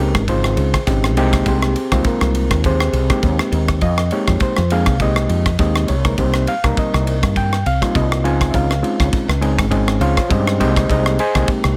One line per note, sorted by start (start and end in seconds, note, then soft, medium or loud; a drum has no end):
0.00 0.13 C#2 medium
0.00 0.23 G#3 medium
0.00 0.25 A#3 medium
0.00 0.23 C4 medium
0.00 0.23 C#4 medium
0.00 0.23 D#4 medium
0.00 0.23 G4 medium
0.00 0.25 A#4 medium
0.15 0.54 G#1 medium
0.15 kick medium
0.15 cross-stick medium
0.15 ride medium
0.28 0.76 C#3 medium
0.28 0.76 G#3 medium
0.28 0.76 C4 medium
0.28 0.76 D#4 medium
0.28 0.76 F4 medium
0.28 0.84 G#4 medium
0.28 0.83 C5 medium
0.28 kick medium
0.28 ride medium
0.44 cross-stick medium
0.57 0.72 C#2 medium
0.57 ride medium
0.74 kick medium
0.74 cross-stick medium
0.74 ride medium
0.87 1.15 G#1 medium
0.87 1.16 G#3 medium
0.87 1.16 C4 medium
0.87 1.16 C#4 medium
0.87 1.16 D#4 medium
0.87 1.16 G4 medium
0.87 kick loud
0.87 ride medium
1.04 cross-stick medium
1.15 1.43 C2 medium
1.15 1.76 G#3 medium
1.15 1.76 A#3 medium
1.15 1.47 C4 medium
1.15 1.76 D#4 medium
1.15 1.47 G4 medium
1.15 ride medium
1.33 kick medium
1.33 cross-stick medium
1.33 ride medium
1.46 1.73 C2 medium
1.46 1.92 C4 medium
1.46 2.02 G4 medium
1.46 2.02 G#4 medium
1.46 2.02 C5 medium
1.46 kick medium
1.46 ride medium
1.62 cross-stick medium
1.76 ride medium
1.92 2.04 C2 medium
1.92 2.85 G#3 medium
1.92 2.07 A#3 medium
1.92 2.65 C4 medium
1.92 2.84 D#4 medium
1.92 2.84 F4 medium
1.92 kick medium
1.92 cross-stick medium
1.92 ride medium
2.04 2.61 A#3 medium
2.04 2.61 A#4 medium
2.04 muted fretless electric bass stroke soft
2.04 kick loud
2.04 ride medium
2.21 2.48 C2 medium
2.21 cross-stick medium
2.35 ride medium
2.51 2.91 D#2 medium
2.51 kick medium
2.51 cross-stick medium
2.51 ride medium
2.64 3.09 C4 medium
2.64 3.09 G4 medium
2.64 3.20 G#4 medium
2.64 3.20 C5 medium
2.64 kick medium
2.64 ride medium
2.80 cross-stick medium
2.93 3.08 C2 medium
2.93 ride medium
3.10 3.82 G#3 medium
3.10 3.82 A#3 medium
3.10 3.82 C4 medium
3.10 3.82 D#4 medium
3.10 3.82 G4 medium
3.10 kick medium
3.10 cross-stick medium
3.10 ride medium
3.23 3.38 D#2 loud
3.23 kick loud
3.23 ride medium
3.39 cross-stick medium
3.52 3.79 D#2 loud
3.52 ride medium
3.68 kick medium
3.68 cross-stick medium
3.68 ride medium
3.81 4.09 F2 medium
3.81 4.10 D#5 medium
3.81 kick medium
3.81 ride medium
3.98 cross-stick medium
4.11 4.59 G#3 medium
4.11 4.59 A#3 medium
4.11 4.59 C4 medium
4.11 4.60 D#4 medium
4.11 4.60 G4 medium
4.11 4.40 C#5 medium
4.11 ride medium
4.27 4.40 F2 medium
4.27 kick medium
4.27 cross-stick medium
4.27 ride medium
4.40 4.70 C5 medium
4.40 kick loud
4.40 ride medium
4.57 4.85 F2 medium
4.57 cross-stick medium
4.70 4.95 G#3 medium
4.70 4.95 A#3 medium
4.70 4.95 C4 medium
4.70 4.95 D#4 medium
4.70 4.95 G#4 medium
4.70 5.00 F5 loud
4.70 ride medium
4.86 5.26 C2 medium
4.86 kick medium
4.86 cross-stick medium
4.86 ride medium
5.00 5.48 G#3 medium
5.00 5.48 A#3 medium
5.00 5.49 C4 medium
5.00 5.48 D#4 medium
5.00 5.48 G4 medium
5.00 5.56 D#5 medium
5.00 kick medium
5.00 ride medium
5.16 cross-stick medium
5.29 5.56 F2 medium
5.29 ride medium
5.46 kick medium
5.46 cross-stick medium
5.46 ride medium
5.59 5.85 D#2 medium
5.59 5.95 G#3 medium
5.59 5.95 A#3 medium
5.59 5.95 C4 medium
5.59 5.95 D#4 medium
5.59 5.95 G4 medium
5.59 5.88 D#5 medium
5.59 kick loud
5.59 ride medium
5.76 cross-stick medium
5.88 6.15 C2 medium
5.88 6.17 C#5 medium
5.88 ride medium
6.05 6.15 G#3 medium
6.05 6.15 A#3 medium
6.05 6.15 C4 medium
6.05 6.15 D#4 medium
6.05 6.15 A#4 medium
6.05 kick medium
6.05 cross-stick medium
6.05 ride medium
6.18 6.45 C2 medium
6.18 6.53 G3 medium
6.18 6.53 A#3 medium
6.18 6.53 C4 medium
6.18 6.53 D#4 medium
6.18 6.53 G4 medium
6.18 6.48 C5 medium
6.18 kick medium
6.18 ride medium
6.34 cross-stick medium
6.47 6.76 F5 loud
6.47 ride medium
6.64 6.76 C2 medium
6.64 7.56 G3 medium
6.64 7.56 A#3 medium
6.64 7.56 C4 medium
6.64 7.56 D#4 medium
6.64 7.56 A#4 medium
6.64 kick medium
6.64 cross-stick medium
6.64 ride medium
6.77 7.33 D#5 medium
6.77 kick loud
6.77 ride medium
6.94 7.21 C2 medium
6.94 cross-stick medium
7.07 ride medium
7.23 7.62 G2 medium
7.23 kick medium
7.23 cross-stick medium
7.23 ride medium
7.36 7.65 G5 loud
7.36 kick medium
7.36 ride medium
7.53 cross-stick medium
7.66 7.81 C2 medium
7.66 7.94 F5 medium
7.66 ride medium
7.82 8.24 G3 medium
7.82 8.24 A#3 medium
7.82 8.24 C4 medium
7.82 8.23 D#4 medium
7.82 8.23 F4 medium
7.82 kick medium
7.82 cross-stick medium
7.82 ride medium
7.95 8.25 C2 loud
7.95 8.24 D#5 medium
7.95 kick loud
7.95 ride medium
8.12 cross-stick medium
8.24 8.52 C#2 loud
8.24 8.73 G#3 medium
8.24 8.73 C4 medium
8.24 8.73 C#4 medium
8.24 8.73 D#4 medium
8.24 8.73 F4 medium
8.24 8.53 G#5 loud
8.24 ride medium
8.41 kick medium
8.41 cross-stick medium
8.41 ride medium
8.51 8.81 C#2 medium
8.51 8.54 E5 medium
8.51 kick medium
8.51 ride medium
8.55 9.09 F5 medium
8.71 cross-stick medium
8.82 9.30 G#3 medium
8.82 9.30 C4 medium
8.82 9.30 C#4 medium
8.82 9.31 D#4 medium
8.82 9.30 F4 medium
8.82 ride medium
9.00 9.12 C#2 medium
9.00 kick medium
9.00 cross-stick medium
9.00 ride medium
9.13 muted fretless electric bass stroke soft
9.13 kick loud
9.13 ride medium
9.28 9.56 C#2 medium
9.28 cross-stick medium
9.41 9.65 G#3 medium
9.41 9.66 C4 medium
9.41 9.65 C#4 medium
9.41 9.65 D#4 medium
9.41 9.66 G#4 loud
9.41 ride medium
9.59 9.98 G#1 medium
9.59 kick medium
9.59 cross-stick medium
9.59 ride medium
9.71 10.19 G#3 medium
9.71 10.19 C4 medium
9.71 10.19 C#4 medium
9.71 10.19 D#4 medium
9.71 10.19 G#4 medium
9.71 kick medium
9.71 ride medium
9.88 cross-stick medium
10.00 10.16 C#2 medium
10.00 10.30 F4 medium
10.00 10.30 C5 medium
10.00 10.30 C#5 medium
10.00 10.30 F5 medium
10.00 ride medium
10.17 kick medium
10.17 cross-stick medium
10.17 ride medium
10.29 10.62 G2 loud
10.29 10.59 G#3 medium
10.29 10.59 C4 medium
10.29 10.59 C#4 medium
10.29 10.59 D#4 medium
10.29 10.59 G4 medium
10.29 10.60 G#4 medium
10.29 10.59 C5 medium
10.29 10.59 D#5 medium
10.29 kick loud
10.29 ride medium
10.47 cross-stick medium
10.60 10.87 C2 medium
10.60 11.19 G#3 medium
10.60 11.19 A#3 medium
10.60 11.19 C4 medium
10.60 10.90 D#4 medium
10.60 11.19 G4 medium
10.60 10.89 C5 medium
10.60 10.89 D#5 medium
10.60 10.89 G5 loud
10.60 ride medium
10.76 kick medium
10.76 cross-stick medium
10.76 ride medium
10.89 11.17 C2 loud
10.89 11.19 D#4 medium
10.89 11.19 G#4 medium
10.89 11.19 C5 medium
10.89 11.19 D#5 medium
10.89 kick medium
10.89 ride medium
11.06 cross-stick medium
11.19 11.48 G#4 medium
11.19 11.48 C5 medium
11.19 11.48 D#5 medium
11.19 11.48 G#5 loud
11.19 ride medium
11.35 11.47 C2 medium
11.35 11.77 G#3 medium
11.35 11.77 A#3 medium
11.35 11.77 C4 medium
11.35 11.77 D#4 medium
11.35 11.77 G4 medium
11.35 kick medium
11.35 cross-stick medium
11.35 ride medium
11.48 kick loud
11.48 ride medium
11.64 11.77 C2 medium
11.64 cross-stick medium